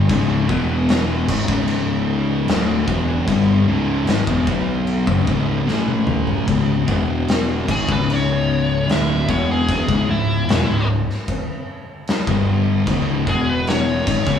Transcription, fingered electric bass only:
0.10 C#1
0.49 E1
1.29 G#1
1.48 C#1
2.48 D1
2.88 E1
3.28 G1
3.68 C#1
4.07 G#1
4.27 E1
4.47 B1
5.07 F#1
5.28 C#1
5.68 A1
6.48 C#1
6.88 E1
7.69 G#1
7.89 C#1
8.89 D1
9.28 E1
9.88 C#1
10.09 C#1
10.50 E1
10.69 C#1
12.27 G1
12.87 C#1
13.27 E1
14.06 G#1
14.26 C#1

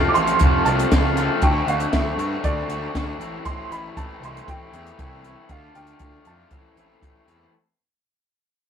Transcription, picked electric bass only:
0.16 A1
0.41 F1
0.65 C2
0.92 C#2
1.42 D2
1.66 D2
1.93 D2
2.17 G2
2.44 D2
2.68 D2
2.94 D2
3.18 A1
3.46 A1
3.70 A1
3.97 A1
4.21 C2
4.48 A1
4.73 E2
4.98 C2
5.49 D2
5.75 D2
5.99 D2
6.26 F2
6.51 A1
6.76 A1
7.01 A1
7.27 E2

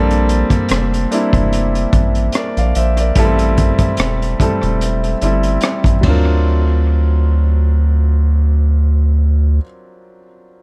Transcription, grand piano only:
Already playing: G3 A#3 C4 D4 A4
1.11 G3 A#3 C4 D4 E4
2.35 A#4 D5
2.58 D5 F5
2.77 C5 E5
3.00 A#4 D5
3.17 G3 A3 B3 E4 A4
3.25 C4
4.40 G3 A3 C4 E4 A4
5.22 G3 A3 C4 E4 A4
6.01 F#3 C4
6.05 D4 F4 A#4

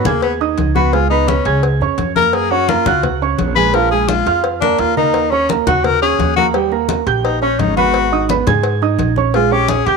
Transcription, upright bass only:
0.05 D#2
0.58 C#2
1.46 C#2
1.80 F2
1.98 F#2
2.86 C#2
3.39 A#1
4.26 F2
4.79 D#2
5.67 D#2
6.19 D#2
7.07 A#1
7.59 G#1
8.47 G#2
8.99 A#1
9.87 D#2

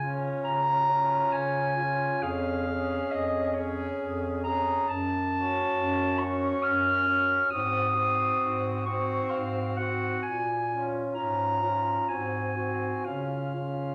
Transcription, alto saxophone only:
0.00 F4
0.90 F4
1.78 F4
2.22 G#4
2.68 G#4
3.57 G#4
4.47 G#4
5.34 F#4
6.20 F#4
7.07 F#4
7.52 F#4
7.96 F#4
8.87 F#4
9.80 F#4
10.70 F4
11.16 F4
11.63 F4
12.11 F#4
12.57 F#4
13.06 F4
13.55 F4

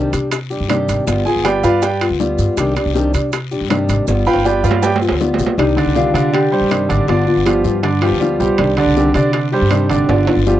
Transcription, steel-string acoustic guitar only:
Already playing: C3 D#3 G3 D4 G4
0.13 G3 D4 G4
0.32 muted steel-string acoustic guitar stroke
0.50 G3 D4 G4
0.69 C3 D#3 G3 D4 G4
1.06 G3 B3 F4
1.26 B3 F4
1.45 G3 B3 F4
1.64 B3 F4
1.83 muted steel-string acoustic guitar stroke
2.01 B3 F4
2.20 G3 B3 F4
2.58 C3 D#3 G3 D4 G4
2.76 G3 D4 G4
2.94 C3 D#3 G3 D4 G4
3.13 G3 D4 G4
3.33 muted steel-string acoustic guitar stroke
3.51 G3 D4 G4
3.69 C3 D#3 G3 D4 G4
4.08 G3 B3 F4
4.27 B3 F4
4.44 G3 B3 F4
4.63 B3 F4
4.82 muted steel-string acoustic guitar stroke
5.01 B3 F4
5.20 G3 B3 F4
5.57 C3 D#3 G3 D4 G4
5.76 D4 G4
5.95 C3 D#3 G3 D4 G4
6.14 G3 D4 G4
6.32 muted steel-string acoustic guitar stroke
6.52 G3 D4 G4
6.70 C3 D#3 G3 D4 G4
7.08 G3 B3 F4
7.27 B3 F4
7.46 G3 B3 F4
7.64 B3 F4
7.83 muted steel-string acoustic guitar stroke
8.01 B3 F4
8.19 G3 B3 F4
8.58 C3 D#3 G3 D4 G4
8.77 G3 D4 G4
8.96 C3 D#3 G3 D4 G4
9.14 G3 D4 G4
9.33 muted steel-string acoustic guitar stroke
9.52 G3 D4 G4
9.70 C3 D#3 G3 D4 G4
10.08 G3 B3 F4
10.27 B3 F4
10.47 G3 B3 F4

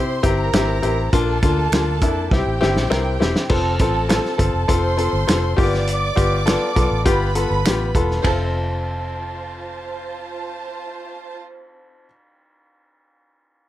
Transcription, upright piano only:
Already playing: C4 E4 G4
0.23 C4 E4 G4
0.54 C4 E4 G4
0.82 C4 E4 G4
1.13 A#3 D4 F4
1.43 A#3 D4 F4
1.73 A#3 D4 F4
2.02 A#3 D4 E4
2.32 C4 E4 G4
2.61 C4 E4 G4
2.90 C4 E4 A#4
3.20 C4 E4 G4
3.50 C4 F4 A4
3.81 C4 F4 A4
4.09 C4 F4 A4
4.38 C4 F4 A4
4.68 C4 F4 A4
4.97 C4 F4 A4
5.27 C4 F4 A4
5.56 A#3 F4 G4
5.63 B3
6.16 B3 F4 G4
6.46 B3 F4 A4
6.75 B3 F4 A4
7.05 B3 F4 G4
7.35 B3 F4 A4
7.66 B3 F4 G4
7.95 B3 F4 A4
8.23 C4 F4 A4

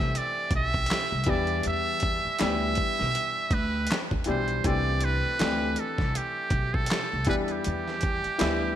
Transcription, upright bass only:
0.00 C2
0.52 B1
1.12 C2
1.27 E2
1.66 E2
2.25 muted upright bass stroke
2.41 D2
3.01 B1
3.52 D2
4.12 E2
4.29 B1
4.65 C2
5.25 muted upright bass stroke
5.41 D2
5.99 C2
6.51 B1
7.13 C2
7.28 E2
7.67 E2
8.25 muted upright bass stroke
8.41 D2

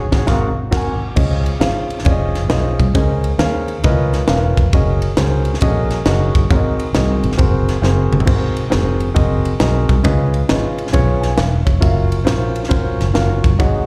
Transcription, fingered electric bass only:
0.12 G#1
0.28 G#1
0.72 G#1
1.17 C#2
1.60 G#1
2.06 F1
2.49 B1
2.80 C2
2.95 C#2
3.38 D#2
3.85 C#2
4.29 E1
4.57 F1
4.73 F#1
5.17 C#2
5.62 A#1
6.06 F#1
6.35 G1
6.51 G#1
6.95 C2
7.24 G#1
7.39 F#1
7.82 F#1
8.12 G1
8.28 G#1
8.73 F1
9.16 F#1
9.61 B1
9.89 C2
10.05 C#2
10.51 G#1
10.95 B1
11.39 E1
11.67 F1
11.82 F#1
12.27 A#1
12.71 G#1
13.00 F#1
13.15 F#1
13.45 G1
13.60 G#1

